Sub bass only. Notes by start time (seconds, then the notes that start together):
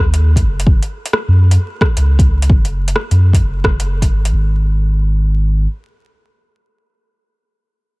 Already playing: D#2
0.44 F#1
1.28 F#2
1.97 C#2
2.50 F#1
3.11 F#2
3.42 F#1
3.64 F#1
4.11 G#1
4.33 G#1